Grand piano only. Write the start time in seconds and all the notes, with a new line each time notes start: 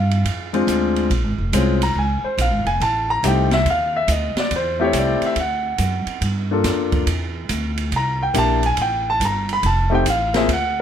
Already playing: F5
0.53 G#3 C4 D4 F4
1.53 G#3 C4 C#4 F4
1.83 A#5
1.98 G#5
2.24 C5
2.41 F5
2.67 G#5
2.82 A5
3.10 A#5
3.24 A3 C4 D#4 G4 G5
3.54 E5
3.70 F5
3.97 E5
4.12 D#5
4.40 D5
4.56 C5
4.80 A3 C4 E4 G4
4.84 C#5
4.99 D5
5.26 E5
5.40 F#5
6.51 A#3 D4 F4 A4
7.96 A#5
8.23 G5
8.34 A#3 D4 E4 G4
8.38 A5
8.66 G#5
8.81 G5
9.10 A5
9.25 A#5
9.53 B5
9.66 A5
9.90 A3 C4 D#4 G4
9.95 G5
10.10 F5
10.34 A#3 C4 F4 G#4 E5
10.53 F#5